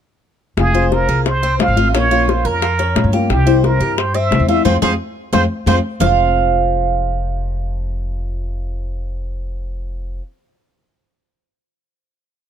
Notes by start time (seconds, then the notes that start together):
0.57 F1 C3 F3 G#3 C4 F4 G#4, high bongo, high conga
0.74 F3 G#3 C4 F4 C5, high bongo, high conga
0.90 F3 G#3 C4 F4 A#4, high bongo, high conga
1.09 C2 G#4, high conga
1.26 C5, muted nylon-string guitar stroke, high bongo, high conga
1.43 C4, high bongo, high conga
1.59 F1 F3 G#3 C4 F4 F5, high bongo, low bongo, high conga
1.68 G#1
1.76 F3 G#3 C4 F4, high bongo, high conga
1.93 A#1 F3 A#3 C#4 F4 C#5, high bongo
2.11 A#3 C#4 F4, high bongo, high conga
2.28 F3 A#3 C#4 F4 C5, high bongo, high conga
2.45 F2 A#4, high conga
2.62 F4, muted nylon-string guitar stroke, high bongo, high conga
2.79 C#4, high bongo, high conga
2.96 A#1 F3 A#3 C#4 F4, high bongo, low bongo, high conga
3.04 G2
3.13 A#3 C#4 F4 G4, high bongo, high conga
3.29 C2 C3 E3 G3 C4 E4 G4, high bongo, high conga
3.46 E3 G3 C4 E4 C5, high bongo, high conga
3.63 E3 G3 C4 E4 A#4, high bongo, high conga
3.80 G2 G4, high conga
3.98 C5, muted nylon-string guitar stroke, high bongo, high conga
4.14 C4 E5, high bongo, high conga
4.31 C2 E3 G3 C4 E4, high bongo, low bongo, high conga
4.40 E2
4.48 E3 G3 C4 E4 F4 E5, high bongo, high conga
4.65 F2 F3 G#3 C4 F4 G#4 C5, low bongo, high conga
4.82 F2 F3 G#3 C4 F4 G#4 C5, low bongo, high conga
5.33 F2 F3 G#3 C4 F4 G#4 C5, low bongo, high conga
5.66 F2 F3 G#3 C4 F4 G#4 C5, low bongo, high conga
6.00 F1 F2 C3 F3 G#3 C4 F4 C5 F5, low bongo, low conga